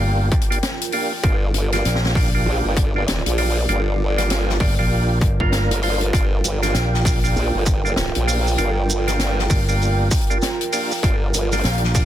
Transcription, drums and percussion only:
0.31 kick, closed hi-hat
0.41 closed hi-hat
0.52 closed hi-hat
0.63 snare, closed hi-hat
0.81 closed hi-hat
0.92 open hi-hat
1.23 kick, closed hi-hat
1.54 closed hi-hat
1.72 snare, closed hi-hat
1.85 snare, closed hi-hat
1.95 snare
2.04 snare
2.05 snare
2.15 kick, snare, open hi-hat
2.77 kick, closed hi-hat
3.08 snare, closed hi-hat
3.26 closed hi-hat
3.38 open hi-hat
3.69 closed hi-hat
4.18 snare, closed hi-hat
4.30 snare, closed hi-hat
4.49 snare
4.60 kick, open hi-hat
5.21 kick, closed hi-hat
5.40 kick
5.52 snare, closed hi-hat
5.71 closed hi-hat
5.82 open hi-hat
6.01 closed hi-hat
6.13 kick, closed hi-hat, maracas
6.44 closed hi-hat, maracas
6.63 snare, closed hi-hat, maracas
6.74 snare, closed hi-hat, maracas
6.94 snare
7.05 kick, snare, open hi-hat, maracas
7.25 maracas
7.36 maracas
7.66 kick, closed hi-hat, maracas
7.86 maracas
7.96 snare, closed hi-hat, maracas
8.15 closed hi-hat
8.28 open hi-hat, maracas
8.47 maracas
8.58 closed hi-hat, maracas
8.90 maracas
9.07 snare, closed hi-hat, maracas
9.19 snare, closed hi-hat, maracas
9.39 snare
9.50 kick, open hi-hat, maracas
9.69 maracas
9.82 maracas
10.11 kick, closed hi-hat, maracas
10.14 closed hi-hat
10.17 closed hi-hat
10.21 closed hi-hat
10.27 closed hi-hat, maracas
10.42 snare, closed hi-hat, maracas
10.61 closed hi-hat
10.72 open hi-hat, maracas
10.91 maracas
11.03 kick, closed hi-hat, maracas
11.34 closed hi-hat, maracas
11.51 snare, closed hi-hat, maracas
11.54 closed hi-hat
11.57 closed hi-hat
11.60 closed hi-hat
11.63 snare, closed hi-hat, maracas
11.68 closed hi-hat
11.73 closed hi-hat
11.78 closed hi-hat
11.84 snare
11.94 kick, snare, open hi-hat, maracas

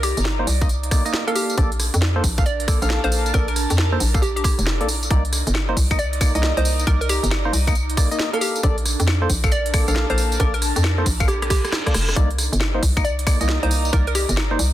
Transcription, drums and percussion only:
0.03 cross-stick, open hi-hat, tambourine
0.17 closed hi-hat, tambourine
0.25 snare
0.47 open hi-hat, tambourine
0.61 kick, tambourine
0.69 closed hi-hat, tambourine
0.83 closed hi-hat
0.91 kick, cross-stick, open hi-hat, tambourine
1.06 closed hi-hat, tambourine
1.14 snare, tambourine
1.28 closed hi-hat
1.36 open hi-hat, tambourine
1.50 closed hi-hat, tambourine
1.58 kick, closed hi-hat, tambourine
1.72 closed hi-hat
1.80 cross-stick, open hi-hat, tambourine
1.94 closed hi-hat, tambourine
2.02 snare, tambourine
2.24 kick, open hi-hat, tambourine
2.38 kick, tambourine
2.46 closed hi-hat, tambourine
2.60 closed hi-hat
2.68 kick, cross-stick, open hi-hat, tambourine
2.82 closed hi-hat, tambourine
2.90 snare
3.04 closed hi-hat
3.12 open hi-hat, tambourine
3.26 closed hi-hat, tambourine
3.34 kick, closed hi-hat, tambourine
3.48 closed hi-hat
3.56 cross-stick, open hi-hat, tambourine
3.70 closed hi-hat, tambourine
3.78 snare
4.00 open hi-hat, tambourine
4.14 kick, tambourine
4.23 closed hi-hat, tambourine
4.37 closed hi-hat
4.44 kick, cross-stick, open hi-hat, tambourine
4.59 closed hi-hat, tambourine
4.67 snare
4.81 closed hi-hat
4.89 open hi-hat, tambourine
5.03 closed hi-hat, tambourine
5.11 kick, closed hi-hat
5.25 closed hi-hat
5.33 cross-stick, open hi-hat, tambourine
5.47 closed hi-hat, tambourine
5.55 snare, tambourine, claves
5.77 kick, open hi-hat, tambourine
5.91 kick, tambourine, claves
5.99 closed hi-hat, tambourine
6.13 closed hi-hat
6.21 kick, cross-stick, open hi-hat, tambourine, claves
6.35 closed hi-hat, tambourine
6.43 snare, tambourine
6.57 closed hi-hat
6.65 open hi-hat, tambourine
6.79 closed hi-hat, tambourine
6.87 kick, closed hi-hat
7.01 closed hi-hat
7.09 cross-stick, open hi-hat, tambourine
7.24 closed hi-hat, tambourine
7.31 snare, tambourine, claves
7.53 open hi-hat, tambourine
7.67 kick, tambourine, claves
7.75 closed hi-hat, tambourine
7.90 closed hi-hat
7.97 kick, cross-stick, open hi-hat, tambourine
8.11 closed hi-hat, tambourine
8.19 snare, tambourine
8.34 closed hi-hat
8.41 open hi-hat, tambourine
8.56 closed hi-hat, tambourine
8.63 kick, closed hi-hat, tambourine
8.78 closed hi-hat
8.86 cross-stick, open hi-hat, tambourine
9.00 closed hi-hat, tambourine
9.08 snare, tambourine, claves
9.30 kick, open hi-hat, tambourine
9.44 kick, tambourine, claves
9.52 closed hi-hat, tambourine
9.66 closed hi-hat
9.74 kick, cross-stick, open hi-hat, tambourine, claves
9.88 closed hi-hat, tambourine
9.96 snare
10.10 closed hi-hat
10.18 open hi-hat, tambourine
10.32 closed hi-hat, tambourine
10.40 kick, closed hi-hat
10.54 closed hi-hat
10.62 cross-stick, open hi-hat, tambourine
10.76 closed hi-hat, tambourine
10.84 snare, tambourine, claves
11.06 kick, open hi-hat, tambourine
11.20 kick, tambourine, claves
11.28 cross-stick, closed hi-hat, tambourine
11.42 cross-stick, closed hi-hat
11.50 kick, cross-stick, open hi-hat, tambourine
11.65 cross-stick, closed hi-hat, tambourine
11.73 cross-stick, snare, tambourine
11.86 kick, cross-stick, closed hi-hat
11.94 cross-stick, open hi-hat, tambourine
12.09 cross-stick, closed hi-hat, tambourine
12.16 kick, closed hi-hat, tambourine
12.31 closed hi-hat
12.38 cross-stick, open hi-hat, tambourine
12.53 closed hi-hat, tambourine
12.61 snare, tambourine, claves
12.83 kick, open hi-hat, tambourine
12.97 kick, tambourine, claves
13.05 closed hi-hat, tambourine
13.19 closed hi-hat
13.27 kick, cross-stick, open hi-hat, tambourine, claves
13.41 closed hi-hat, tambourine
13.49 snare
13.63 closed hi-hat
13.71 open hi-hat, tambourine
13.85 closed hi-hat, tambourine
13.93 kick, closed hi-hat
14.07 closed hi-hat
14.15 cross-stick, open hi-hat, tambourine
14.29 closed hi-hat, tambourine
14.37 snare, tambourine, claves
14.59 open hi-hat, tambourine

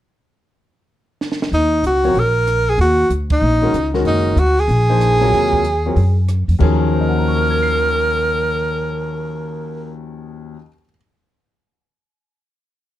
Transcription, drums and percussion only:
1.21 snare
1.32 snare
1.42 snare
1.53 open hi-hat
1.84 closed hi-hat
2.04 open hi-hat
2.15 open hi-hat
2.47 cross-stick, closed hi-hat
2.79 open hi-hat
3.10 closed hi-hat
3.30 kick, ride
3.74 cross-stick, closed hi-hat
3.94 snare
4.05 open hi-hat
4.37 closed hi-hat
4.57 open hi-hat
4.69 open hi-hat
5.01 cross-stick, closed hi-hat
5.21 open hi-hat
5.33 snare, open hi-hat
5.53 kick
5.65 closed hi-hat
5.96 open hi-hat
6.29 cross-stick, closed hi-hat
6.49 open hi-hat
6.60 kick, crash

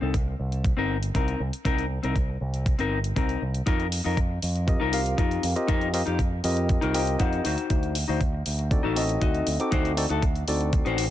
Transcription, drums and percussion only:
0.14 kick, closed hi-hat
0.52 closed hi-hat
0.64 kick, closed hi-hat
1.03 closed hi-hat
1.15 kick, closed hi-hat
1.28 closed hi-hat
1.53 closed hi-hat
1.65 kick, closed hi-hat
1.78 closed hi-hat
2.04 closed hi-hat
2.16 kick, closed hi-hat
2.54 closed hi-hat
2.66 kick, closed hi-hat
2.79 closed hi-hat
3.04 closed hi-hat
3.16 kick, closed hi-hat
3.29 closed hi-hat
3.54 closed hi-hat
3.67 kick, closed hi-hat
3.80 closed hi-hat
3.92 open hi-hat
4.17 kick, closed hi-hat
4.42 open hi-hat
4.56 closed hi-hat
4.68 kick, closed hi-hat
4.93 open hi-hat
5.06 closed hi-hat
5.18 kick, closed hi-hat
5.31 closed hi-hat
5.43 open hi-hat
5.56 closed hi-hat
5.68 kick, closed hi-hat
5.81 closed hi-hat
5.94 open hi-hat
6.07 closed hi-hat
6.19 kick, closed hi-hat
6.44 open hi-hat
6.57 closed hi-hat
6.69 kick, closed hi-hat
6.82 closed hi-hat
6.94 open hi-hat
7.07 closed hi-hat
7.20 kick, closed hi-hat
7.33 closed hi-hat
7.45 open hi-hat
7.58 closed hi-hat
7.70 kick, closed hi-hat
7.83 closed hi-hat
7.95 open hi-hat
8.21 kick, closed hi-hat
8.46 open hi-hat
8.59 closed hi-hat
8.71 kick, closed hi-hat
8.96 open hi-hat
9.09 closed hi-hat
9.21 kick, closed hi-hat
9.35 closed hi-hat
9.47 open hi-hat
9.60 closed hi-hat
9.72 kick, closed hi-hat
9.85 closed hi-hat
9.97 open hi-hat
10.10 closed hi-hat
10.22 kick, closed hi-hat
10.35 closed hi-hat
10.48 open hi-hat
10.61 closed hi-hat
10.73 kick, closed hi-hat
10.86 closed hi-hat
10.98 open hi-hat

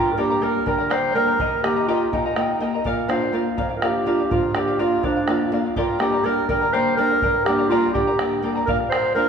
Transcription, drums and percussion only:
0.06 bombo rim
0.67 bombo rim, bombo low
0.91 bombo rim
1.04 bombo rim
1.15 bombo rim
1.39 bombo rim, bombo low
1.64 bombo rim
1.89 bombo rim
2.13 bombo low
2.36 bombo rim
2.49 bombo rim
2.85 bombo low
2.98 bombo rim
3.10 bombo rim
3.58 bombo rim, bombo low
3.82 bombo rim
3.94 bombo rim
4.07 bombo rim
4.31 bombo low
4.43 bombo rim
4.55 bombo rim
5.03 bombo rim, bombo low
5.28 bombo rim
5.40 bombo rim
5.52 bombo rim
5.76 bombo low
5.88 bombo rim
6.00 bombo rim
6.49 bombo rim, bombo low
6.86 bombo rim
6.98 bombo rim
7.22 bombo low
7.34 bombo rim
7.46 bombo rim
7.59 bombo rim
7.71 bombo rim
7.95 bombo low
8.19 bombo rim
8.68 bombo low
8.80 bombo rim
8.92 bombo rim

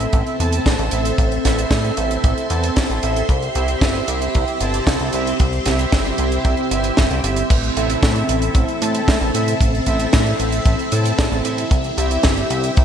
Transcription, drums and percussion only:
0.00 closed hi-hat
0.13 kick, closed hi-hat
0.27 closed hi-hat
0.40 closed hi-hat
0.52 closed hi-hat
0.66 kick, snare, closed hi-hat
0.79 closed hi-hat
0.91 closed hi-hat
1.05 closed hi-hat
1.18 kick, closed hi-hat
1.32 closed hi-hat
1.45 kick, snare, closed hi-hat
1.58 closed hi-hat
1.71 kick, snare, closed hi-hat
1.85 closed hi-hat
1.97 closed hi-hat
2.11 closed hi-hat
2.24 kick, closed hi-hat
2.38 closed hi-hat
2.50 closed hi-hat
2.64 closed hi-hat
2.76 kick, snare, closed hi-hat
2.90 closed hi-hat
3.03 closed hi-hat
3.16 closed hi-hat
3.29 kick, closed hi-hat
3.42 closed hi-hat
3.55 closed hi-hat
3.68 closed hi-hat
3.81 kick, snare, closed hi-hat
3.95 closed hi-hat
4.08 closed hi-hat
4.22 closed hi-hat
4.35 kick, closed hi-hat
4.48 closed hi-hat
4.60 closed hi-hat
4.74 closed hi-hat
4.87 kick, snare, closed hi-hat
4.99 closed hi-hat
5.13 closed hi-hat
5.27 closed hi-hat
5.40 kick, closed hi-hat
5.53 closed hi-hat
5.66 kick, snare, closed hi-hat
5.79 closed hi-hat
5.92 kick, snare, closed hi-hat
6.06 closed hi-hat
6.18 closed hi-hat
6.32 closed hi-hat
6.45 kick, closed hi-hat
6.57 closed hi-hat
6.71 closed hi-hat
6.84 closed hi-hat
6.97 kick, snare, closed hi-hat
7.10 closed hi-hat
7.24 closed hi-hat
7.36 closed hi-hat
7.50 kick, closed hi-hat, crash
7.63 closed hi-hat
7.77 closed hi-hat
7.90 closed hi-hat
8.03 kick, snare, closed hi-hat
8.16 closed hi-hat
8.29 closed hi-hat
8.42 closed hi-hat
8.55 kick, closed hi-hat
8.68 closed hi-hat
8.82 closed hi-hat
8.95 closed hi-hat
9.08 kick, snare, closed hi-hat
9.21 closed hi-hat
9.35 closed hi-hat
9.48 closed hi-hat
9.61 kick, closed hi-hat
9.75 closed hi-hat
9.86 kick, closed hi-hat
10.00 closed hi-hat
10.13 kick, snare, closed hi-hat
10.27 closed hi-hat
10.39 closed hi-hat
10.52 closed hi-hat
10.66 kick, closed hi-hat
10.79 closed hi-hat
10.92 closed hi-hat
11.05 closed hi-hat
11.19 kick, snare, closed hi-hat
11.32 closed hi-hat
11.45 closed hi-hat
11.58 closed hi-hat
11.71 kick, closed hi-hat
11.84 closed hi-hat
11.98 closed hi-hat
12.11 closed hi-hat
12.23 kick, snare, closed hi-hat
12.37 closed hi-hat
12.50 closed hi-hat
12.64 closed hi-hat
12.77 kick, closed hi-hat

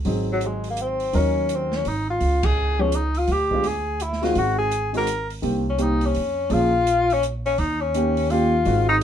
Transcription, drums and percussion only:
0.05 kick, open hi-hat
0.41 closed hi-hat
0.64 open hi-hat
0.77 closed hi-hat
1.00 open hi-hat
1.13 kick, open hi-hat
1.49 closed hi-hat
1.72 snare
1.85 open hi-hat
2.20 kick, open hi-hat
2.43 kick, ride
2.92 closed hi-hat
3.15 open hi-hat
3.27 kick, open hi-hat
3.51 kick
3.64 open hi-hat
4.00 closed hi-hat
4.13 snare
4.23 snare, open hi-hat
4.35 kick, open hi-hat
4.71 closed hi-hat
4.94 open hi-hat
5.07 closed hi-hat
5.30 open hi-hat
5.43 kick, open hi-hat
5.78 closed hi-hat
6.01 open hi-hat
6.14 open hi-hat
6.50 kick, open hi-hat
6.87 closed hi-hat
7.10 open hi-hat
7.23 closed hi-hat
7.46 open hi-hat
7.58 kick, open hi-hat
7.94 closed hi-hat
8.17 open hi-hat
8.30 open hi-hat
8.65 kick, open hi-hat

